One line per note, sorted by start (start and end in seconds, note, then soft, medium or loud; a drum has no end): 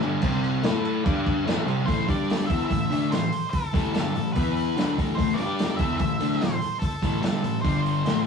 0.02 0.23 G2 medium
0.02 0.22 D3 loud
0.02 0.22 G3 loud
0.02 crash medium
0.21 0.64 C3 medium
0.21 0.63 G3 medium
0.21 0.49 C4 medium
0.21 0.64 C4 medium
0.21 0.49 G4 medium
0.21 0.49 C5 loud
0.21 kick loud
0.21 crash medium
0.44 crash medium
0.62 1.04 A3 medium
0.62 0.88 E4 medium
0.62 1.05 E4 loud
0.62 0.88 A4 medium
0.62 1.05 A4 loud
0.62 0.89 C5 medium
0.62 snare loud
0.62 crash medium
0.85 crash medium
1.01 1.45 G3 loud
1.01 1.28 D4 medium
1.01 1.29 G4 medium
1.01 1.30 D5 medium
1.05 1.46 D4 medium
1.05 1.46 G4 loud
1.05 kick loud
1.05 crash medium
1.26 kick medium
1.26 crash medium
1.45 1.65 A2 medium
1.45 1.66 E3 loud
1.45 1.67 A3 loud
1.45 1.72 E4 loud
1.45 1.72 A4 medium
1.45 1.73 C5 loud
1.45 snare loud
1.45 crash medium
1.65 1.87 C3 loud
1.65 1.87 G3 loud
1.65 1.87 C4 loud
1.65 crash medium
1.86 2.08 A2 medium
1.86 2.08 E3 medium
1.86 2.07 A3 medium
1.86 2.01 E4 medium
1.86 2.01 A4 medium
1.86 2.06 C5 loud
1.86 2.02 C5 loud
1.86 kick loud
1.86 open hi-hat medium
2.08 2.49 G3 medium
2.08 2.49 D4 medium
2.08 2.43 D4 medium
2.08 2.50 G4 medium
2.08 2.42 G4 medium
2.08 2.46 D5 loud
2.08 2.43 D5 medium
2.08 kick loud
2.08 open hi-hat medium
2.30 snare loud
2.30 open hi-hat medium
2.47 2.69 E3 loud
2.47 2.70 B3 loud
2.47 2.99 E4 medium
2.47 2.70 E4 loud
2.47 3.00 A4 medium
2.47 3.00 C5 medium
2.47 2.64 E5 medium
2.47 kick loud
2.47 open hi-hat medium
2.65 3.11 E5 loud
2.71 2.87 A2 medium
2.71 2.88 E3 medium
2.71 kick medium
2.71 open hi-hat medium
2.90 3.11 D3 medium
2.90 3.11 A3 loud
2.90 3.12 D4 loud
2.90 open hi-hat medium
3.09 3.28 A2 medium
3.09 3.28 E3 medium
3.09 3.36 E4 medium
3.09 3.36 A4 medium
3.09 3.36 B4 medium
3.09 3.50 C5 medium
3.09 open hi-hat medium
3.13 snare loud
3.33 open hi-hat medium
3.51 3.65 E4 loud
3.51 3.91 A4 loud
3.51 3.65 A4 medium
3.51 3.65 C5 loud
3.51 kick medium
3.51 open hi-hat medium
3.71 3.94 A2 medium
3.71 3.94 E3 medium
3.71 3.94 A3 loud
3.71 3.85 E4 medium
3.71 3.86 A4 medium
3.71 3.86 C5 medium
3.71 kick loud
3.71 open hi-hat medium
3.93 4.14 G2 medium
3.93 4.15 D3 medium
3.93 4.15 G3 loud
3.93 4.19 E4 medium
3.93 4.32 A4 medium
3.93 4.19 A4 medium
3.93 4.20 D5 medium
3.93 snare loud
3.93 open hi-hat medium
4.15 4.32 A2 medium
4.15 4.32 E3 medium
4.15 open hi-hat medium
4.33 4.76 E3 medium
4.33 4.77 B3 loud
4.33 4.60 E4 medium
4.33 4.92 B4 medium
4.33 4.61 B4 medium
4.33 4.61 E5 medium
4.33 kick loud
4.33 open hi-hat medium
4.38 4.77 E4 loud
4.57 open hi-hat medium
4.74 4.97 D3 medium
4.74 4.97 A3 medium
4.74 4.97 D4 medium
4.74 5.01 E4 medium
4.74 5.01 A4 medium
4.74 5.01 C5 medium
4.74 open hi-hat medium
4.79 snare loud
4.98 5.17 A2 medium
4.98 5.17 E3 loud
4.98 5.17 A3 medium
4.98 kick loud
4.98 open hi-hat medium
5.15 5.38 A2 medium
5.15 5.39 E3 medium
5.15 5.39 A3 medium
5.15 5.31 E4 medium
5.15 5.38 C5 loud
5.15 kick loud
5.15 open hi-hat medium
5.19 5.31 A4 medium
5.19 5.31 B4 loud
5.34 5.76 D5 medium
5.34 open hi-hat medium
5.39 5.79 G3 medium
5.39 5.72 D4 medium
5.39 5.80 D4 loud
5.39 5.72 G4 medium
5.39 5.80 G4 medium
5.39 5.72 D5 medium
5.59 snare loud
5.59 open hi-hat medium
5.76 5.98 E3 medium
5.76 6.28 E4 medium
5.76 6.29 A4 medium
5.76 6.29 C5 medium
5.76 5.96 E5 medium
5.76 kick loud
5.76 open hi-hat medium
5.81 5.99 B3 medium
5.81 6.00 E4 loud
5.98 6.16 A2 medium
5.98 6.16 E3 medium
5.98 6.42 E5 loud
5.98 kick loud
5.98 open hi-hat medium
6.20 6.40 D3 loud
6.20 6.40 A3 loud
6.20 6.41 D4 loud
6.20 open hi-hat medium
6.33 snare soft
6.38 6.58 A2 medium
6.38 6.58 E3 medium
6.38 6.67 E4 medium
6.38 6.78 C5 medium
6.38 open hi-hat medium
6.43 6.68 A4 medium
6.43 6.68 C5 medium
6.43 snare loud
6.62 open hi-hat medium
6.80 6.95 E4 medium
6.80 7.19 A4 loud
6.80 6.96 C5 loud
6.80 kick loud
6.80 open hi-hat medium
6.84 6.96 A4 medium
7.02 7.22 A2 medium
7.02 7.22 E3 medium
7.02 7.23 A3 medium
7.02 7.15 E4 medium
7.02 7.16 A4 medium
7.02 7.15 C5 medium
7.02 kick loud
7.02 open hi-hat medium
7.22 7.43 G2 loud
7.22 7.43 D3 loud
7.22 7.43 G3 loud
7.22 7.49 E4 medium
7.22 7.61 A4 medium
7.22 7.49 A4 medium
7.22 7.49 C5 medium
7.22 snare loud
7.22 open hi-hat medium
7.44 7.61 A2 medium
7.44 7.60 E3 medium
7.44 open hi-hat medium
7.61 8.05 G2 loud
7.61 8.05 D3 medium
7.61 8.05 G3 loud
7.61 8.21 C5 medium
7.61 kick loud
7.61 open hi-hat medium
7.66 7.90 D4 medium
7.66 7.91 G4 medium
7.66 7.91 D5 medium
7.86 open hi-hat medium
8.05 8.25 A2 loud
8.05 8.26 E3 medium
8.05 8.26 A3 medium
8.05 8.27 E4 medium
8.05 8.27 A4 medium
8.05 8.27 C5 medium
8.05 snare medium
8.05 open hi-hat medium